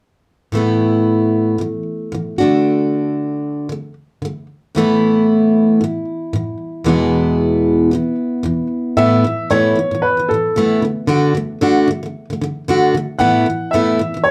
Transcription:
0.52 1.57 A2 medium
0.52 1.60 E3 medium
0.52 2.41 A3 medium
0.52 1.61 B3 medium
0.57 1.61 E4 medium
1.58 1.81 A2 soft
1.58 1.82 E3 medium
2.12 2.34 A2 medium
2.12 2.35 E3 medium
2.38 3.68 D3 soft
2.38 3.72 A3 soft
2.38 3.72 D4 soft
2.38 3.71 F#4 medium
3.69 3.92 D3 soft
3.69 3.93 A3 medium
4.22 4.45 D3 soft
4.22 4.46 A3 medium
4.75 5.80 A2 medium
4.75 5.83 E3 medium
4.75 5.82 A3 medium
4.75 5.84 B3 medium
4.79 6.88 E4 medium
5.81 6.03 A2 soft
5.81 6.04 E3 medium
6.33 6.56 A2 medium
6.33 6.57 E3 medium
6.84 7.90 E2 medium
6.84 7.92 B2 medium
6.84 7.94 E3 medium
6.84 7.92 G#3 medium
6.84 8.98 B3 medium
6.89 8.98 E4 medium
7.91 8.14 E2 soft
7.91 8.15 B2 medium
7.91 8.15 E3 medium
8.43 8.66 E2 medium
8.43 8.66 B2 medium
8.43 8.67 E3 medium
8.97 9.23 A2 medium
8.97 9.24 E3 medium
8.97 9.25 A3 medium
8.97 9.25 B3 medium
8.97 9.25 E4 medium
8.97 9.52 E5 medium
9.24 9.46 A2 medium
9.24 9.47 E3 soft
9.50 9.74 A2 medium
9.50 9.77 E3 medium
9.50 9.77 A3 medium
9.50 9.77 B3 medium
9.50 9.78 E4 medium
9.50 10.05 C#5 medium
9.75 9.90 A2 soft
9.75 9.93 E3 medium
9.91 10.12 A2 soft
9.91 10.14 E3 soft
10.02 10.30 B4 medium
10.17 10.29 A2 soft
10.17 10.31 E3 soft
10.29 10.52 A2 soft
10.29 10.78 A4 medium
10.34 10.53 E3 soft
10.56 10.82 A2 medium
10.56 10.82 E3 medium
10.56 10.83 A3 medium
10.56 10.84 B3 medium
10.56 10.84 E4 medium
10.82 11.04 D3 soft
10.82 11.05 A3 soft
11.07 11.33 D3 medium
11.07 11.35 A3 medium
11.07 11.35 D4 medium
11.07 11.36 F#4 medium
11.35 11.57 D3 medium
11.35 11.58 A3 medium
11.61 11.86 D3 medium
11.61 11.88 A3 medium
11.61 11.88 D4 medium
11.61 11.89 F#4 medium
11.88 12.02 D3 medium
11.88 12.04 A3 medium
12.03 12.23 D3 soft
12.03 12.25 A3 soft
12.30 12.40 D3 soft
12.30 12.42 A3 soft
12.41 12.63 D3 medium
12.41 12.64 A3 medium
12.68 12.93 D3 medium
12.68 12.94 A3 medium
12.68 12.94 D4 medium
12.68 12.95 F#4 medium
12.94 13.15 D3 medium
12.94 13.17 A3 medium
13.19 13.45 A2 medium
13.19 13.46 E3 medium
13.19 13.46 A3 medium
13.19 13.46 B3 medium
13.19 13.46 E4 medium
13.19 13.73 F#5 medium
13.46 13.68 A2 soft
13.46 13.69 E3 soft
13.71 13.98 A2 medium
13.71 13.99 E3 medium
13.71 13.99 A3 medium
13.71 14.00 B3 medium
13.71 14.20 E5 medium
13.75 14.00 E4 medium
13.99 14.13 A2 medium
13.99 14.14 E3 medium
14.14 14.31 A2 soft
14.14 14.31 E3 soft
14.24 14.31 C#5 medium

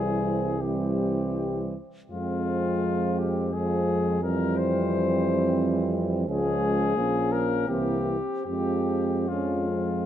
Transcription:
0.00 1.78 C2 soft
0.00 0.59 E3 soft
0.00 0.43 G3 soft
0.00 0.57 C4 soft
0.00 0.62 G#4 medium
0.58 1.75 E3 soft
0.58 1.75 G3 soft
0.58 1.74 C4 soft
0.58 1.74 G4 soft
2.10 6.30 F2 soft
2.10 3.49 F3 soft
2.10 3.49 G#3 soft
2.10 3.50 C4 soft
2.10 3.20 F4 soft
3.19 3.55 G4 soft
3.53 4.21 F3 soft
3.53 4.21 G#3 soft
3.53 4.21 C4 soft
3.53 4.22 G#4 soft
4.22 6.24 E3 soft
4.22 6.25 G3 soft
4.22 6.25 C4 soft
4.22 4.59 A#4 medium
4.57 5.95 C5 medium
6.28 6.96 C#2 medium
6.28 6.95 F3 soft
6.28 6.99 G#3 soft
6.28 6.95 C#4 soft
6.28 7.34 G#4 medium
6.96 7.67 A#1 soft
6.96 7.70 F3 soft
6.96 7.67 A#3 soft
6.96 7.66 C#4 soft
7.32 7.68 A#4 medium
7.68 8.17 C2 soft
7.68 8.18 E3 soft
7.68 8.17 A#3 soft
7.68 8.46 C4 soft
7.68 8.45 G4 medium
8.45 10.06 F2 soft
8.45 9.25 F3 soft
8.45 9.26 G#3 soft
8.45 9.28 C4 soft
8.45 9.30 G4 soft
9.28 10.06 F3 soft
9.28 10.06 G#3 soft
9.28 9.67 C#4 soft
9.28 10.06 F4 soft
9.71 10.06 C4 soft

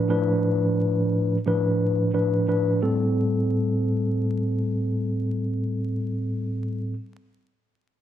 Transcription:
0.08 1.36 A2 medium
0.08 1.36 F3 medium
0.08 1.37 D4 medium
0.08 1.37 B4 loud
1.46 2.09 A2 loud
1.46 2.10 F3 medium
1.46 2.10 D4 medium
1.46 2.10 B4 loud
2.13 2.45 A2 medium
2.13 2.45 F3 medium
2.13 2.46 D4 medium
2.13 2.46 B4 medium
2.47 2.79 A2 medium
2.47 2.80 F3 medium
2.47 2.80 D4 medium
2.47 2.80 B4 medium
2.82 6.93 A2 medium
2.82 6.93 G3 medium
2.82 6.93 C4 medium
2.82 6.94 A4 medium

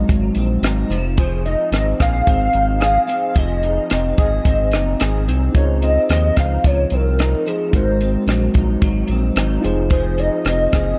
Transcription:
0.00 0.97 G#2 medium
0.00 0.37 C4 medium
0.00 0.64 D#4 medium
0.09 0.31 G#1 medium
0.09 0.90 F#3 medium
0.09 kick medium
0.09 closed hi-hat medium
0.35 0.58 A#1 medium
0.35 1.72 C4 medium
0.35 closed hi-hat medium
0.62 0.84 G#1 medium
0.62 1.21 D#4 medium
0.62 cross-stick medium
0.62 closed hi-hat medium
0.90 1.56 F1 loud
0.90 1.18 F3 medium
0.90 closed hi-hat medium
1.18 3.35 F3 medium
1.18 1.99 G#4 medium
1.18 1.44 C5 loud
1.18 kick medium
1.18 closed hi-hat medium
1.46 2.53 D#4 medium
1.46 1.71 D#5 loud
1.46 closed hi-hat soft
1.72 1.94 G#1 medium
1.72 2.27 C4 medium
1.72 1.86 D#5 loud
1.72 cross-stick medium
1.72 closed hi-hat medium
2.00 2.22 A#1 medium
2.00 2.80 G#4 medium
2.00 3.39 F5 loud
2.00 kick medium
2.00 cross-stick medium
2.00 closed hi-hat soft
2.27 2.49 G#1 medium
2.27 3.07 C4 medium
2.27 kick medium
2.27 closed hi-hat medium
2.53 2.98 G#1 medium
2.53 3.63 D#4 soft
2.53 closed hi-hat soft
2.80 3.36 G#4 medium
2.80 cross-stick medium
2.80 closed hi-hat medium
3.07 3.91 C4 medium
3.07 closed hi-hat medium
3.35 3.79 F1 medium
3.35 5.59 F3 medium
3.35 4.18 G#4 medium
3.35 4.18 D#5 loud
3.35 kick medium
3.35 closed hi-hat medium
3.63 4.73 D#4 medium
3.63 closed hi-hat soft
3.90 4.13 F1 medium
3.90 4.45 C4 medium
3.90 cross-stick medium
3.90 closed hi-hat medium
4.18 4.40 G#1 medium
4.18 5.00 G#4 medium
4.18 5.24 D#5 loud
4.18 kick medium
4.18 closed hi-hat soft
4.45 4.76 G#1 medium
4.45 5.28 C4 medium
4.45 kick medium
4.45 closed hi-hat medium
4.71 4.95 F#1 medium
4.71 5.56 D#4 medium
4.71 cross-stick medium
4.71 closed hi-hat soft
5.00 5.29 G#1 medium
5.00 8.31 G#4 medium
5.00 cross-stick medium
5.00 closed hi-hat medium
5.28 5.50 C2 medium
5.28 5.83 C4 soft
5.28 closed hi-hat medium
5.52 5.98 C#2 medium
5.52 7.68 D#4 medium
5.52 6.37 D#4 medium
5.52 7.69 F4 medium
5.52 7.70 G#4 medium
5.52 5.67 C#5 loud
5.52 kick medium
5.52 closed hi-hat medium
5.57 5.63 A#4 medium
5.64 7.74 C5 medium
5.82 6.93 C4 medium
5.82 6.08 D#5 loud
5.82 closed hi-hat soft
6.09 6.31 D#2 medium
6.09 6.63 F3 medium
6.09 6.36 D#5 loud
6.09 cross-stick medium
6.09 closed hi-hat medium
6.36 6.58 C#2 medium
6.36 7.20 D#4 medium
6.36 6.67 F5 loud
6.36 kick medium
6.36 cross-stick medium
6.36 closed hi-hat soft
6.64 6.86 C#2 loud
6.64 7.45 F3 medium
6.64 6.96 C#5 loud
6.64 kick medium
6.64 closed hi-hat medium
6.90 7.35 C2 medium
6.90 8.02 C4 medium
6.90 7.49 A#4 medium
6.90 closed hi-hat soft
7.19 7.75 D#4 medium
7.19 cross-stick medium
7.19 closed hi-hat medium
7.46 7.79 F3 medium
7.46 7.74 G#4 medium
7.46 closed hi-hat medium
7.71 8.17 G#1 medium
7.71 9.71 G#2 medium
7.71 9.59 D#4 medium
7.71 9.60 F#4 medium
7.71 9.61 A#4 medium
7.71 8.25 C5 medium
7.71 kick medium
7.71 closed hi-hat medium
7.75 8.55 D#4 medium
7.75 9.62 C5 medium
8.01 9.10 C4 medium
8.01 closed hi-hat soft
8.27 8.49 A#1 loud
8.27 8.81 F#3 medium
8.27 cross-stick medium
8.27 closed hi-hat medium
8.54 8.76 A#1 medium
8.54 9.37 D#4 medium
8.54 kick medium
8.54 closed hi-hat soft
8.82 9.04 G#1 medium
8.82 9.63 F#3 medium
8.82 kick medium
8.82 closed hi-hat medium
9.07 9.31 A#1 medium
9.07 10.46 C4 medium
9.07 closed hi-hat medium
9.36 9.58 G#1 loud
9.36 9.95 D#4 medium
9.36 cross-stick medium
9.36 closed hi-hat medium
9.61 10.30 F1 loud
9.61 9.91 F3 medium
9.61 10.99 D#4 medium
9.61 10.99 F4 medium
9.61 10.99 G#4 medium
9.61 closed hi-hat medium
9.65 10.99 C5 medium
9.90 10.99 F3 medium
9.90 10.74 G#4 medium
9.90 10.21 C5 loud
9.90 kick medium
9.90 closed hi-hat medium
10.18 10.99 D#4 medium
10.18 10.99 D#5 loud
10.18 closed hi-hat soft
10.45 10.67 F1 medium
10.45 10.99 C4 medium
10.45 cross-stick medium
10.45 closed hi-hat medium
10.73 10.95 F#1 medium
10.73 10.99 G#4 medium
10.73 kick medium
10.73 cross-stick medium
10.73 closed hi-hat soft

